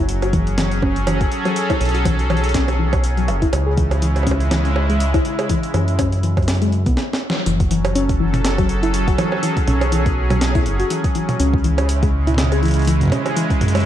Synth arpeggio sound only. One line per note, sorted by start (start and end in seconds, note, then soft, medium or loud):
0.22 0.27 F#4 medium
0.33 0.46 E3 medium
0.58 0.67 E3 medium
0.82 0.95 C#4 medium
1.07 1.16 E3 medium
1.45 1.53 F#3 medium
1.70 1.77 E4 loud
1.94 1.99 F#4 medium
2.05 2.18 E3 medium
2.30 2.39 E3 medium
2.54 2.68 C#4 medium
2.79 2.88 E3 medium
3.17 3.25 F#3 medium
3.42 3.49 E4 loud
3.67 3.71 G#4 medium
3.77 3.90 E3 medium
4.02 4.11 E3 medium
4.27 4.40 C#4 medium
4.51 4.61 E3 medium
4.90 4.97 G#3 medium
5.14 5.22 E4 loud
5.39 5.43 G#4 medium
5.50 5.63 E3 medium
5.74 5.84 E3 medium
5.99 6.12 C#4 medium
6.23 6.33 E3 medium
6.62 6.69 G#3 medium
6.86 6.94 B3 medium
7.46 7.59 E3 medium
7.71 7.80 E3 medium
7.95 8.08 C#4 medium
8.20 8.29 E3 medium
8.58 8.66 F#3 medium
8.83 8.90 E4 loud
9.08 9.12 F#4 medium
9.18 9.31 E3 medium
9.43 9.52 E3 medium
9.67 9.81 C#4 medium
9.92 10.01 E3 medium
10.30 10.38 F#3 medium
10.55 10.62 E4 loud
10.80 10.84 F#4 medium
10.90 11.04 E3 medium
11.15 11.25 E3 medium
11.40 11.53 C#4 medium
11.64 11.74 E3 medium
12.03 12.10 G#3 medium
12.27 12.35 E4 loud
12.52 12.56 G#4 medium
12.63 12.76 E3 medium
12.87 12.97 E3 medium
13.12 13.25 C#4 medium
13.36 13.46 E3 medium
13.75 13.82 G#3 medium